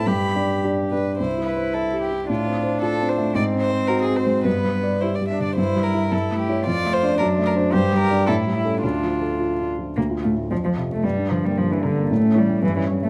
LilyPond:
<<
  \new Staff \with { instrumentName = "Violin" } { \time 2/4 \key c \major \tempo 4 = 111 b''4 r8 b'8 | c''8 b'8 a'8 g'8 | f'4 a'8 c''8 | d''8 c''8 bes'16 aes'16 c''8 |
b'4 c''16 d''16 e''16 d''16 | \key d \minor c''8 bes'8 a'8 g'8 | d''8 c''8 bes'8 bes'8 | c''8 bes'8 a'8 e'8 |
d'4. r8 | r8 f''8 r8 a'8 | r8 bes'8 r8 bes'8 | r8 cis''8 r8 cis''8 | }
  \new Staff \with { instrumentName = "Grand piano" } { \time 2/4 \key c \major g,8 <d' g' d''>8 <d' g' d''>8 <d' g' d''>8 | \tuplet 3/2 { c,8 e'8 c''8 e''8 g'8 e'8 } | \tuplet 3/2 { a,8 c'8 c''8 f'8 c'8 a8 } | \tuplet 3/2 { aes,8 c'8 c''8 ges'8 c'8 aes8 } |
\tuplet 3/2 { g,8 g8 d''8 g'8 g8 d8 } | \key d \minor \tuplet 3/2 { g,8 g8 <e' e''>8 g,8 a8 <e' cis''>8 } | \tuplet 3/2 { f,8 a8 <d' d''>8 fis,8 a8 <d' c''>8 } | \tuplet 3/2 { g,8 g8 <d' d''>8 a,8 g8 <cis' a'>8 } |
\tuplet 3/2 { d,8 f8 a'8 f'8 d'8 f8 } | d,16 f'16 a,16 a16 f,16 f'16 c16 a16 | g,16 d'16 d16 bes16 g,16 d'16 d16 bes16 | a,16 cis'16 e16 a16 g,16 cis'16 g16 a16 | }
  \new Staff \with { instrumentName = "Cello" } { \time 2/4 \key c \major g'4. r8 | e'2 | d'2 | c'2 |
b4 e'8 d'8 | \key d \minor e'4 e'4 | f'4 d'4 | g'4 e'4 |
f'4. r8 | bes8 a8 f16 f8 a16 | g8 f16 g16 f16 e16 d8 | a8 g8 e16 e8 a16 | }
>>